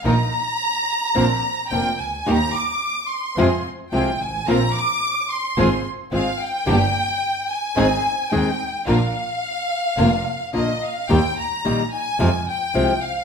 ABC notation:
X:1
M:4/4
L:1/8
Q:1/4=109
K:Bbmix
V:1 name="Violin section"
b6 g a | b d'2 c'2 z g a | b d'2 c'2 z f g- | g3 a3 g2 |
f6 e f | g b2 a2 g2 f |]
V:2 name="String section"
[EFB] z3 [CDB] z [CDB] z | [B,EG] z3 [CFA] z [CFA] z | [CFB] z3 [CFA] z [CFA] z | [B,DG] z3 [CEA] z [CEA] z |
[DFB] z3 [DFB] z [DFB] z | z8 |]
V:3 name="Nylon-string guitar"
[E,B,EF] z3 [D,B,CF] z [D,B,CF] z | [E,G,B,EG] z3 [C,F,A,CF] z [C,F,A,CF] z | [F,B,CF] z3 [A,CF] z [A,CF] z | [D,G,B,DG] z3 [E,A,CEA] z [E,A,CEA] z |
[D,B,DF] z3 [D,B,DF] z [D,B,DF] z | [E,G,B,EG] z [E,G,B,EG] z [C,F,A,CF] z [C,F,A,CF] z |]
V:4 name="Double bass" clef=bass
B,,, z3 B,,, z F,,, _D,, | E,, z3 F,, z C,, A,,, | B,,, z3 A,,, z A,,, z | G,,, z3 A,,, z E,, z |
B,,, z3 F,,, z B,,, z | E,, z B,,, z F,, z C,, z |]